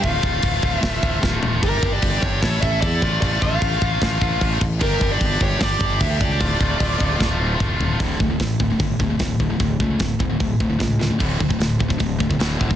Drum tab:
CC |x-x-x-x-x-x-----|x-x-x-x-x-x-x-x-|x-x-x-x-x-x-x-x-|x-x-x-x-x-x-x-x-|
HH |----------------|----------------|----------------|----------------|
SD |--------o---o---|--------o-------|--------o-------|--------o-------|
T2 |----------------|----------------|----------------|----------------|
FT |--------------o-|----------------|----------------|----------------|
BD |o-o-o-o-o-o-o---|o-o-o-o-o-o-o-o-|o-o-o-o-o-o-o-o-|o-o-o-o-o-o-o-o-|

CC |x-x-x-x---------|----------------|----------------|x---------------|
HH |----------------|o---o---o---o---|o---o---o---o---|----o---o---o---|
SD |--------o-------|----o-------o---|----o-------o-o-|----o-------o---|
T2 |------------o---|----------------|----------------|----------------|
FT |--------------o-|----------------|----------------|----------------|
BD |o-o-o-o-o---o---|o-o-o-o-o-o-o-o-|o-o-o-o-o-o-o---|o-oo--ooo-oo--oo|